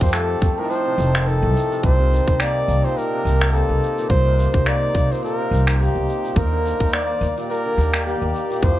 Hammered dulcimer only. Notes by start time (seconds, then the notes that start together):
Already playing: D#3
0.00 F3
0.13 A3
0.57 A2
0.70 A2
0.86 C3
0.98 A3
1.14 D#3
1.27 D#3
1.43 A2
1.71 C3
1.83 A#2
1.99 C3
2.12 D#3
2.28 D#4
2.40 A#3
2.84 A#2
2.97 A#2
3.13 C3
3.25 D#3
3.41 D#4
3.53 A#3
3.98 A#2
4.10 A#2
4.26 C3
4.38 D#3
4.54 D#4
4.66 A#3
5.10 A#2
5.23 A#2
5.39 C3
5.51 D#3
5.67 D#4
5.80 A#3
6.24 A#2
6.36 A#2
6.52 D3
6.64 D#3
6.80 D#4
6.93 A#3
7.37 A#2
7.50 A#2
7.65 D3
7.78 D#3
7.94 D#4
8.06 A#3
8.50 A#2
8.62 A2